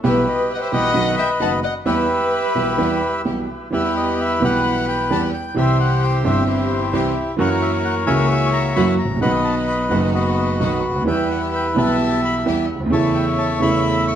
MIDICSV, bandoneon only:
0, 0, Header, 1, 2, 480
1, 0, Start_track
1, 0, Key_signature, 1, "minor"
1, 0, Tempo, 458716
1, 40, Time_signature, 4, 2, 24, 8
1, 9639, Tempo, 462963
1, 14762, End_track
2, 0, Start_track
2, 0, Title_t, "Bandoneon"
2, 0, Program_c, 0, 23
2, 40, Note_on_c, 0, 71, 67
2, 44, Note_on_c, 0, 67, 63
2, 56, Note_on_c, 0, 76, 82
2, 293, Note_off_c, 0, 76, 0
2, 293, Note_on_c, 0, 75, 79
2, 507, Note_off_c, 0, 75, 0
2, 523, Note_on_c, 0, 76, 80
2, 548, Note_off_c, 0, 76, 0
2, 574, Note_on_c, 0, 78, 69
2, 634, Note_off_c, 0, 78, 0
2, 645, Note_on_c, 0, 76, 83
2, 751, Note_off_c, 0, 76, 0
2, 752, Note_off_c, 0, 71, 0
2, 768, Note_on_c, 0, 71, 72
2, 771, Note_on_c, 0, 75, 72
2, 773, Note_on_c, 0, 78, 96
2, 952, Note_off_c, 0, 67, 0
2, 1208, Note_off_c, 0, 78, 0
2, 1244, Note_on_c, 0, 79, 88
2, 1348, Note_off_c, 0, 79, 0
2, 1483, Note_on_c, 0, 81, 98
2, 1587, Note_off_c, 0, 81, 0
2, 1673, Note_off_c, 0, 71, 0
2, 1675, Note_off_c, 0, 75, 0
2, 1713, Note_on_c, 0, 78, 82
2, 1819, Note_off_c, 0, 78, 0
2, 1948, Note_on_c, 0, 76, 89
2, 1950, Note_on_c, 0, 67, 62
2, 1950, Note_on_c, 0, 71, 64
2, 3361, Note_off_c, 0, 76, 0
2, 3362, Note_off_c, 0, 67, 0
2, 3362, Note_off_c, 0, 71, 0
2, 3905, Note_on_c, 0, 67, 64
2, 3906, Note_on_c, 0, 71, 63
2, 3912, Note_on_c, 0, 76, 84
2, 4131, Note_off_c, 0, 76, 0
2, 4155, Note_on_c, 0, 75, 77
2, 4396, Note_off_c, 0, 75, 0
2, 4404, Note_on_c, 0, 76, 86
2, 4631, Note_off_c, 0, 71, 0
2, 4641, Note_off_c, 0, 76, 0
2, 4646, Note_on_c, 0, 71, 69
2, 4651, Note_on_c, 0, 78, 96
2, 4827, Note_off_c, 0, 67, 0
2, 5086, Note_off_c, 0, 78, 0
2, 5114, Note_on_c, 0, 79, 82
2, 5353, Note_on_c, 0, 81, 92
2, 5357, Note_off_c, 0, 79, 0
2, 5459, Note_off_c, 0, 81, 0
2, 5555, Note_off_c, 0, 71, 0
2, 5585, Note_on_c, 0, 79, 77
2, 5808, Note_off_c, 0, 79, 0
2, 5831, Note_on_c, 0, 76, 91
2, 5835, Note_on_c, 0, 72, 68
2, 5837, Note_on_c, 0, 67, 72
2, 6050, Note_off_c, 0, 76, 0
2, 6070, Note_on_c, 0, 78, 82
2, 6312, Note_off_c, 0, 78, 0
2, 6312, Note_on_c, 0, 79, 91
2, 6416, Note_off_c, 0, 79, 0
2, 6548, Note_on_c, 0, 76, 81
2, 6738, Note_off_c, 0, 72, 0
2, 6739, Note_off_c, 0, 67, 0
2, 6778, Note_on_c, 0, 72, 70
2, 6784, Note_on_c, 0, 67, 54
2, 6786, Note_on_c, 0, 64, 53
2, 6787, Note_off_c, 0, 76, 0
2, 7448, Note_off_c, 0, 72, 0
2, 7690, Note_off_c, 0, 67, 0
2, 7691, Note_off_c, 0, 64, 0
2, 7738, Note_on_c, 0, 70, 72
2, 7738, Note_on_c, 0, 73, 66
2, 7740, Note_on_c, 0, 78, 84
2, 7844, Note_off_c, 0, 78, 0
2, 7974, Note_on_c, 0, 76, 72
2, 8079, Note_off_c, 0, 76, 0
2, 8211, Note_on_c, 0, 78, 77
2, 8318, Note_off_c, 0, 78, 0
2, 8425, Note_off_c, 0, 73, 0
2, 8441, Note_on_c, 0, 73, 72
2, 8441, Note_on_c, 0, 80, 92
2, 8443, Note_on_c, 0, 76, 70
2, 8646, Note_off_c, 0, 70, 0
2, 8887, Note_off_c, 0, 80, 0
2, 8929, Note_on_c, 0, 82, 94
2, 9149, Note_off_c, 0, 82, 0
2, 9165, Note_on_c, 0, 83, 96
2, 9272, Note_off_c, 0, 83, 0
2, 9358, Note_off_c, 0, 73, 0
2, 9360, Note_off_c, 0, 76, 0
2, 9405, Note_on_c, 0, 82, 85
2, 9627, Note_off_c, 0, 82, 0
2, 9645, Note_on_c, 0, 78, 96
2, 9648, Note_on_c, 0, 71, 73
2, 9650, Note_on_c, 0, 75, 75
2, 9751, Note_off_c, 0, 78, 0
2, 9882, Note_on_c, 0, 81, 80
2, 9989, Note_off_c, 0, 81, 0
2, 10120, Note_on_c, 0, 83, 87
2, 10228, Note_off_c, 0, 83, 0
2, 10356, Note_on_c, 0, 78, 81
2, 10464, Note_off_c, 0, 78, 0
2, 10560, Note_off_c, 0, 71, 0
2, 10561, Note_off_c, 0, 75, 0
2, 10605, Note_on_c, 0, 75, 72
2, 10610, Note_on_c, 0, 71, 48
2, 10612, Note_on_c, 0, 66, 52
2, 11285, Note_off_c, 0, 75, 0
2, 11529, Note_off_c, 0, 71, 0
2, 11530, Note_off_c, 0, 66, 0
2, 11570, Note_on_c, 0, 71, 59
2, 11571, Note_on_c, 0, 79, 77
2, 11572, Note_on_c, 0, 76, 59
2, 11793, Note_off_c, 0, 79, 0
2, 11813, Note_on_c, 0, 78, 67
2, 11920, Note_off_c, 0, 78, 0
2, 12067, Note_on_c, 0, 79, 75
2, 12171, Note_off_c, 0, 79, 0
2, 12283, Note_off_c, 0, 76, 0
2, 12299, Note_on_c, 0, 76, 72
2, 12304, Note_on_c, 0, 81, 89
2, 12491, Note_off_c, 0, 71, 0
2, 12744, Note_off_c, 0, 81, 0
2, 12788, Note_on_c, 0, 83, 80
2, 12891, Note_off_c, 0, 83, 0
2, 13209, Note_off_c, 0, 76, 0
2, 13485, Note_on_c, 0, 73, 64
2, 13489, Note_on_c, 0, 76, 60
2, 13494, Note_on_c, 0, 81, 80
2, 13724, Note_on_c, 0, 79, 71
2, 13738, Note_off_c, 0, 81, 0
2, 13833, Note_off_c, 0, 79, 0
2, 13968, Note_on_c, 0, 81, 83
2, 14190, Note_off_c, 0, 81, 0
2, 14198, Note_off_c, 0, 76, 0
2, 14210, Note_on_c, 0, 83, 99
2, 14213, Note_on_c, 0, 76, 75
2, 14402, Note_off_c, 0, 73, 0
2, 14650, Note_off_c, 0, 83, 0
2, 14686, Note_on_c, 0, 85, 88
2, 14762, Note_off_c, 0, 76, 0
2, 14762, Note_off_c, 0, 85, 0
2, 14762, End_track
0, 0, End_of_file